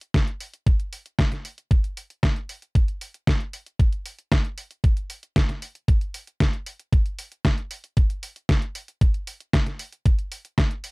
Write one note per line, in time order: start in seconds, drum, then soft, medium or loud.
0.01 closed hi-hat soft
0.14 kick loud
0.14 snare loud
0.14 closed hi-hat medium
0.27 closed hi-hat soft
0.40 open hi-hat loud
0.54 closed hi-hat soft
0.66 kick loud
0.66 closed hi-hat medium
0.80 closed hi-hat soft
0.93 open hi-hat loud
1.06 closed hi-hat soft
1.19 kick loud
1.19 snare loud
1.19 closed hi-hat medium
1.32 snare soft
1.32 closed hi-hat soft
1.45 open hi-hat loud
1.58 closed hi-hat soft
1.71 kick loud
1.71 closed hi-hat medium
1.84 closed hi-hat soft
1.97 open hi-hat loud
2.10 closed hi-hat soft
2.23 kick loud
2.23 snare loud
2.23 closed hi-hat medium
2.36 closed hi-hat soft
2.49 open hi-hat loud
2.62 closed hi-hat soft
2.75 kick loud
2.75 closed hi-hat medium
2.88 closed hi-hat soft
3.01 open hi-hat loud
3.14 closed hi-hat soft
3.27 kick loud
3.27 snare loud
3.27 closed hi-hat medium
3.40 closed hi-hat soft
3.53 open hi-hat loud
3.66 closed hi-hat soft
3.79 kick loud
3.79 closed hi-hat medium
3.93 closed hi-hat soft
4.06 open hi-hat loud
4.19 closed hi-hat soft
4.32 kick loud
4.32 snare loud
4.32 closed hi-hat medium
4.45 closed hi-hat soft
4.58 open hi-hat loud
4.71 closed hi-hat soft
4.84 kick loud
4.84 closed hi-hat medium
4.97 closed hi-hat soft
5.10 open hi-hat loud
5.23 closed hi-hat soft
5.36 kick loud
5.36 snare loud
5.36 closed hi-hat medium
5.49 snare soft
5.49 closed hi-hat soft
5.62 open hi-hat loud
5.75 closed hi-hat soft
5.88 kick loud
5.88 closed hi-hat medium
6.01 closed hi-hat soft
6.14 open hi-hat loud
6.27 closed hi-hat soft
6.40 kick loud
6.40 snare loud
6.40 closed hi-hat medium
6.53 closed hi-hat soft
6.66 open hi-hat loud
6.80 closed hi-hat soft
6.93 kick loud
6.93 closed hi-hat medium
7.06 closed hi-hat soft
7.19 open hi-hat loud
7.32 closed hi-hat soft
7.45 kick loud
7.45 snare loud
7.45 closed hi-hat medium
7.58 closed hi-hat soft
7.71 open hi-hat loud
7.84 closed hi-hat soft
7.97 kick loud
7.97 closed hi-hat medium
8.10 closed hi-hat soft
8.23 open hi-hat loud
8.36 closed hi-hat soft
8.49 kick loud
8.49 snare loud
8.49 closed hi-hat medium
8.62 closed hi-hat soft
8.75 open hi-hat loud
8.88 closed hi-hat soft
9.01 kick loud
9.01 closed hi-hat medium
9.14 closed hi-hat soft
9.27 open hi-hat loud
9.40 closed hi-hat soft
9.53 kick medium
9.53 snare loud
9.53 closed hi-hat medium
9.66 snare soft
9.66 closed hi-hat soft
9.79 open hi-hat loud
9.92 closed hi-hat soft
10.06 kick loud
10.06 closed hi-hat medium
10.19 closed hi-hat soft
10.32 open hi-hat loud
10.45 closed hi-hat soft
10.58 kick loud
10.58 snare loud
10.58 closed hi-hat medium
10.71 closed hi-hat soft
10.84 open hi-hat loud